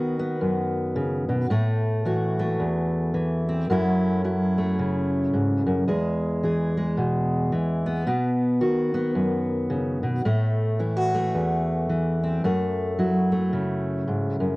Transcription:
Already playing: D#3 B3 F#4
0.19 B3
0.41 F#2
0.96 C#3
1.29 B2
1.50 A2 A3
2.05 E3 F#4
2.39 A3
2.59 E2
3.14 E3
3.49 C4
3.70 F#2 F#3 A3 C#4 E4
4.24 F#3 E4
4.58 A3
4.79 C#3
5.33 G#2
5.67 F#2
5.88 E2 G#3
6.43 E3 G#4
6.77 G#3
6.97 B2
7.52 E3
7.86 B3
8.07 B2 B3
8.61 D#3 F#4
8.94 B3
9.15 F#2
9.70 C#3
10.03 B2
10.25 A2 A3
10.79 E3 E4
10.96 F#4
11.14 A3
11.35 E2
11.89 E3
12.23 C4
12.44 F#2 A3
12.98 F#3 E4
13.32 A3
13.53 C#3
14.08 G#2
14.40 F#2

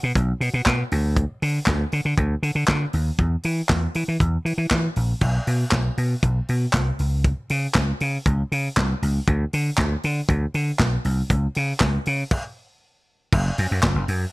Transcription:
0.03 B2
0.15 B1, kick, closed hi-hat
0.41 B2, open hi-hat
0.54 B2
0.66 B2, kick, snare, clap, closed hi-hat
0.91 D2, open hi-hat
1.17 kick, closed hi-hat
1.42 D3, open hi-hat
1.66 D2, kick, snare, clap, closed hi-hat
1.92 D3, open hi-hat
2.05 D3
2.18 D2, kick, closed hi-hat
2.43 D3, open hi-hat
2.55 D3
2.68 D3, kick, snare, clap, closed hi-hat
2.93 D#2, open hi-hat
3.18 E2, kick, closed hi-hat
3.43 E3, open hi-hat
3.69 E2, kick, snare, clap, closed hi-hat
3.94 E3, open hi-hat
4.08 E3
4.20 E2, kick, closed hi-hat
4.45 E3, open hi-hat
4.58 E3
4.71 E3, kick, snare, clap, closed hi-hat
4.96 A#1, open hi-hat
5.21 B1, kick, crash
5.47 B2, open hi-hat
5.71 B1, kick, snare, clap, closed hi-hat
5.97 B2, open hi-hat
6.23 B1, kick, closed hi-hat
6.48 B2, open hi-hat
6.73 C2, kick, snare, clap, closed hi-hat
6.99 C#2, open hi-hat
7.24 kick, closed hi-hat
7.49 C#3, open hi-hat
7.75 C#2, kick, snare, clap, closed hi-hat
8.00 C#3, open hi-hat
8.26 C#2, kick, closed hi-hat
8.52 C#3, open hi-hat
8.77 C2, kick, snare, clap, closed hi-hat
9.02 C#2, open hi-hat
9.28 D2, kick, closed hi-hat
9.53 D3, open hi-hat
9.78 D2, kick, snare, clap, closed hi-hat
10.03 D3, open hi-hat
10.29 D2, kick, closed hi-hat
10.54 D3, open hi-hat
10.79 B1, kick, snare, clap, closed hi-hat
11.05 C2, open hi-hat
11.30 C#2, kick, closed hi-hat
11.55 C#3, open hi-hat
11.80 C#2, kick, snare, clap, closed hi-hat
12.06 C#3, open hi-hat
12.31 kick, crash
13.32 F#1, kick, crash
13.58 F#2, open hi-hat
13.71 F#2
13.83 F#1, kick, snare, clap, closed hi-hat
13.95 F#1
14.08 F#2, open hi-hat

